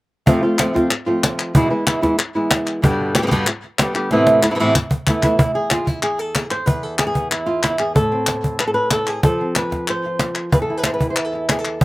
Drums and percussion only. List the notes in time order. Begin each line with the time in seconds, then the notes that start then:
0.27 cajon bass
0.58 cajon slap, clap
0.76 cajon bass, cajon slap
0.91 clap
1.24 cajon slap, clap
1.39 clap
1.55 cajon bass
1.87 cajon slap, clap
2.03 cajon bass, cajon slap
2.19 cajon slap, clap
2.51 cajon slap, clap
2.67 clap
2.84 cajon bass
3.15 cajon slap, clap
3.31 cajon bass
3.47 cajon slap, clap
3.64 cajon slap
3.79 cajon slap, clap
3.95 clap
4.11 cajon slap
4.27 cajon slap
4.43 cajon slap, clap
4.75 cajon bass, clap
4.91 cajon bass
5.07 cajon bass, clap
5.23 cajon bass, clap
5.39 cajon bass
5.70 cajon slap, clap
5.87 cajon bass
6.03 clap
6.35 cajon slap, clap
6.51 clap
6.67 cajon bass
6.98 cajon slap, clap
7.15 cajon bass
7.31 clap
7.48 cajon slap
7.63 cajon slap, clap
7.79 clap
7.96 cajon bass
8.27 cajon slap, clap
8.44 cajon bass
8.59 cajon slap, clap
8.91 cajon slap, clap
9.07 clap
9.23 cajon bass
9.55 cajon slap, clap
9.72 cajon bass, cajon slap
9.88 clap
10.05 cajon slap
10.19 cajon slap, clap
10.35 clap
10.52 cajon bass
10.84 cajon slap, clap
11.01 cajon bass
11.16 clap
11.33 cajon slap
11.49 cajon slap, clap
11.65 clap
11.81 cajon bass